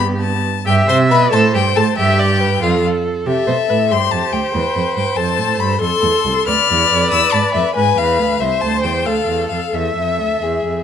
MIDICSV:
0, 0, Header, 1, 5, 480
1, 0, Start_track
1, 0, Tempo, 452148
1, 710, Time_signature, 6, 3, 24, 8
1, 1181, Tempo, 432900
1, 2621, Tempo, 424328
1, 6461, Tempo, 432900
1, 9821, Tempo, 450789
1, 11948, End_track
2, 0, Start_track
2, 0, Title_t, "Violin"
2, 0, Program_c, 0, 40
2, 211, Note_on_c, 0, 81, 85
2, 693, Note_off_c, 0, 81, 0
2, 708, Note_on_c, 0, 79, 98
2, 793, Note_off_c, 0, 79, 0
2, 946, Note_on_c, 0, 84, 98
2, 1030, Note_off_c, 0, 84, 0
2, 1180, Note_on_c, 0, 83, 86
2, 1268, Note_off_c, 0, 83, 0
2, 1417, Note_on_c, 0, 81, 98
2, 1506, Note_off_c, 0, 81, 0
2, 1667, Note_on_c, 0, 79, 96
2, 1902, Note_on_c, 0, 81, 88
2, 1919, Note_off_c, 0, 79, 0
2, 2130, Note_off_c, 0, 81, 0
2, 2137, Note_on_c, 0, 79, 95
2, 2874, Note_on_c, 0, 77, 82
2, 2891, Note_off_c, 0, 79, 0
2, 3112, Note_off_c, 0, 77, 0
2, 3591, Note_on_c, 0, 76, 90
2, 4321, Note_on_c, 0, 84, 100
2, 4338, Note_off_c, 0, 76, 0
2, 4546, Note_on_c, 0, 81, 89
2, 4563, Note_off_c, 0, 84, 0
2, 4785, Note_on_c, 0, 79, 76
2, 4802, Note_off_c, 0, 81, 0
2, 5495, Note_off_c, 0, 79, 0
2, 5502, Note_on_c, 0, 79, 85
2, 5731, Note_on_c, 0, 81, 96
2, 5748, Note_off_c, 0, 79, 0
2, 6221, Note_on_c, 0, 83, 86
2, 6238, Note_off_c, 0, 81, 0
2, 6457, Note_off_c, 0, 83, 0
2, 6463, Note_on_c, 0, 84, 108
2, 7188, Note_off_c, 0, 84, 0
2, 7201, Note_on_c, 0, 89, 114
2, 7890, Note_off_c, 0, 89, 0
2, 7897, Note_on_c, 0, 88, 108
2, 8137, Note_on_c, 0, 81, 92
2, 8154, Note_off_c, 0, 88, 0
2, 8373, Note_off_c, 0, 81, 0
2, 8380, Note_on_c, 0, 76, 80
2, 8600, Note_off_c, 0, 76, 0
2, 8607, Note_on_c, 0, 80, 110
2, 8864, Note_on_c, 0, 77, 96
2, 8881, Note_off_c, 0, 80, 0
2, 9333, Note_on_c, 0, 76, 83
2, 9349, Note_off_c, 0, 77, 0
2, 9568, Note_on_c, 0, 81, 86
2, 9584, Note_off_c, 0, 76, 0
2, 9804, Note_off_c, 0, 81, 0
2, 9811, Note_on_c, 0, 79, 73
2, 10060, Note_on_c, 0, 77, 82
2, 10076, Note_off_c, 0, 79, 0
2, 10510, Note_off_c, 0, 77, 0
2, 10517, Note_on_c, 0, 77, 74
2, 10781, Note_on_c, 0, 76, 70
2, 10797, Note_off_c, 0, 77, 0
2, 11948, Note_off_c, 0, 76, 0
2, 11948, End_track
3, 0, Start_track
3, 0, Title_t, "Viola"
3, 0, Program_c, 1, 41
3, 0, Note_on_c, 1, 59, 58
3, 453, Note_off_c, 1, 59, 0
3, 705, Note_on_c, 1, 76, 89
3, 1422, Note_on_c, 1, 72, 71
3, 1439, Note_off_c, 1, 76, 0
3, 2130, Note_off_c, 1, 72, 0
3, 2137, Note_on_c, 1, 76, 90
3, 2375, Note_on_c, 1, 74, 69
3, 2391, Note_off_c, 1, 76, 0
3, 2613, Note_on_c, 1, 71, 65
3, 2630, Note_off_c, 1, 74, 0
3, 2862, Note_off_c, 1, 71, 0
3, 2867, Note_on_c, 1, 69, 68
3, 3581, Note_on_c, 1, 67, 75
3, 3598, Note_off_c, 1, 69, 0
3, 3812, Note_off_c, 1, 67, 0
3, 3819, Note_on_c, 1, 72, 66
3, 3909, Note_off_c, 1, 72, 0
3, 4067, Note_on_c, 1, 71, 66
3, 4157, Note_off_c, 1, 71, 0
3, 4314, Note_on_c, 1, 72, 69
3, 6417, Note_off_c, 1, 72, 0
3, 6463, Note_on_c, 1, 69, 77
3, 7197, Note_on_c, 1, 74, 81
3, 7214, Note_off_c, 1, 69, 0
3, 8619, Note_off_c, 1, 74, 0
3, 8626, Note_on_c, 1, 71, 70
3, 9327, Note_off_c, 1, 71, 0
3, 9348, Note_on_c, 1, 72, 75
3, 10055, Note_on_c, 1, 69, 61
3, 10071, Note_off_c, 1, 72, 0
3, 10782, Note_on_c, 1, 76, 65
3, 10798, Note_off_c, 1, 69, 0
3, 11867, Note_off_c, 1, 76, 0
3, 11948, End_track
4, 0, Start_track
4, 0, Title_t, "Violin"
4, 0, Program_c, 2, 40
4, 0, Note_on_c, 2, 67, 67
4, 443, Note_off_c, 2, 67, 0
4, 702, Note_on_c, 2, 67, 88
4, 926, Note_off_c, 2, 67, 0
4, 934, Note_on_c, 2, 72, 85
4, 1018, Note_off_c, 2, 72, 0
4, 1171, Note_on_c, 2, 71, 91
4, 1406, Note_off_c, 2, 71, 0
4, 1412, Note_on_c, 2, 69, 91
4, 1653, Note_off_c, 2, 69, 0
4, 1662, Note_on_c, 2, 67, 73
4, 1751, Note_off_c, 2, 67, 0
4, 1898, Note_on_c, 2, 69, 81
4, 1986, Note_off_c, 2, 69, 0
4, 2131, Note_on_c, 2, 67, 87
4, 2845, Note_off_c, 2, 67, 0
4, 2855, Note_on_c, 2, 65, 63
4, 3098, Note_off_c, 2, 65, 0
4, 3585, Note_on_c, 2, 69, 64
4, 4317, Note_on_c, 2, 67, 64
4, 4334, Note_off_c, 2, 69, 0
4, 5024, Note_off_c, 2, 67, 0
4, 5031, Note_on_c, 2, 71, 59
4, 5745, Note_on_c, 2, 69, 64
4, 5762, Note_off_c, 2, 71, 0
4, 6461, Note_off_c, 2, 69, 0
4, 6466, Note_on_c, 2, 69, 69
4, 7189, Note_off_c, 2, 69, 0
4, 7205, Note_on_c, 2, 71, 67
4, 8599, Note_off_c, 2, 71, 0
4, 8626, Note_on_c, 2, 71, 63
4, 9346, Note_on_c, 2, 72, 61
4, 9363, Note_off_c, 2, 71, 0
4, 10056, Note_on_c, 2, 69, 55
4, 10072, Note_off_c, 2, 72, 0
4, 10765, Note_off_c, 2, 69, 0
4, 10771, Note_on_c, 2, 69, 47
4, 11502, Note_on_c, 2, 68, 43
4, 11518, Note_off_c, 2, 69, 0
4, 11948, Note_off_c, 2, 68, 0
4, 11948, End_track
5, 0, Start_track
5, 0, Title_t, "Cello"
5, 0, Program_c, 3, 42
5, 0, Note_on_c, 3, 43, 73
5, 464, Note_off_c, 3, 43, 0
5, 710, Note_on_c, 3, 43, 92
5, 930, Note_off_c, 3, 43, 0
5, 944, Note_on_c, 3, 48, 88
5, 1177, Note_on_c, 3, 47, 87
5, 1193, Note_off_c, 3, 48, 0
5, 1417, Note_off_c, 3, 47, 0
5, 1424, Note_on_c, 3, 45, 80
5, 1659, Note_on_c, 3, 43, 81
5, 1676, Note_off_c, 3, 45, 0
5, 1896, Note_off_c, 3, 43, 0
5, 1902, Note_on_c, 3, 45, 76
5, 1991, Note_off_c, 3, 45, 0
5, 2143, Note_on_c, 3, 43, 87
5, 2851, Note_off_c, 3, 43, 0
5, 2866, Note_on_c, 3, 41, 74
5, 3104, Note_off_c, 3, 41, 0
5, 3585, Note_on_c, 3, 48, 68
5, 3676, Note_off_c, 3, 48, 0
5, 3827, Note_on_c, 3, 47, 66
5, 3918, Note_off_c, 3, 47, 0
5, 4071, Note_on_c, 3, 45, 61
5, 4314, Note_on_c, 3, 43, 67
5, 4331, Note_off_c, 3, 45, 0
5, 4547, Note_off_c, 3, 43, 0
5, 4554, Note_on_c, 3, 41, 58
5, 4644, Note_off_c, 3, 41, 0
5, 4790, Note_on_c, 3, 38, 63
5, 4880, Note_off_c, 3, 38, 0
5, 5037, Note_on_c, 3, 40, 72
5, 5127, Note_off_c, 3, 40, 0
5, 5275, Note_on_c, 3, 41, 65
5, 5366, Note_off_c, 3, 41, 0
5, 5509, Note_on_c, 3, 43, 63
5, 5599, Note_off_c, 3, 43, 0
5, 5739, Note_on_c, 3, 41, 60
5, 5984, Note_on_c, 3, 45, 66
5, 6000, Note_off_c, 3, 41, 0
5, 6217, Note_off_c, 3, 45, 0
5, 6224, Note_on_c, 3, 43, 69
5, 6455, Note_off_c, 3, 43, 0
5, 6462, Note_on_c, 3, 41, 71
5, 6550, Note_off_c, 3, 41, 0
5, 6707, Note_on_c, 3, 40, 65
5, 6795, Note_off_c, 3, 40, 0
5, 6954, Note_on_c, 3, 36, 65
5, 7042, Note_off_c, 3, 36, 0
5, 7207, Note_on_c, 3, 38, 72
5, 7295, Note_off_c, 3, 38, 0
5, 7451, Note_on_c, 3, 40, 73
5, 7680, Note_off_c, 3, 40, 0
5, 7691, Note_on_c, 3, 41, 67
5, 7917, Note_off_c, 3, 41, 0
5, 7922, Note_on_c, 3, 40, 72
5, 8011, Note_off_c, 3, 40, 0
5, 8153, Note_on_c, 3, 44, 76
5, 8242, Note_off_c, 3, 44, 0
5, 8392, Note_on_c, 3, 41, 69
5, 8481, Note_off_c, 3, 41, 0
5, 8624, Note_on_c, 3, 44, 67
5, 8857, Note_off_c, 3, 44, 0
5, 8865, Note_on_c, 3, 40, 69
5, 9100, Note_on_c, 3, 38, 65
5, 9117, Note_off_c, 3, 40, 0
5, 9335, Note_off_c, 3, 38, 0
5, 9342, Note_on_c, 3, 36, 76
5, 9431, Note_off_c, 3, 36, 0
5, 9586, Note_on_c, 3, 38, 68
5, 9829, Note_on_c, 3, 40, 60
5, 9845, Note_off_c, 3, 38, 0
5, 10062, Note_on_c, 3, 38, 59
5, 10078, Note_off_c, 3, 40, 0
5, 10288, Note_off_c, 3, 38, 0
5, 10294, Note_on_c, 3, 40, 51
5, 10526, Note_off_c, 3, 40, 0
5, 10534, Note_on_c, 3, 41, 52
5, 10620, Note_off_c, 3, 41, 0
5, 10777, Note_on_c, 3, 40, 60
5, 11014, Note_off_c, 3, 40, 0
5, 11023, Note_on_c, 3, 41, 47
5, 11263, Note_on_c, 3, 38, 44
5, 11279, Note_off_c, 3, 41, 0
5, 11502, Note_off_c, 3, 38, 0
5, 11508, Note_on_c, 3, 40, 49
5, 11740, Note_off_c, 3, 40, 0
5, 11750, Note_on_c, 3, 41, 41
5, 11948, Note_off_c, 3, 41, 0
5, 11948, End_track
0, 0, End_of_file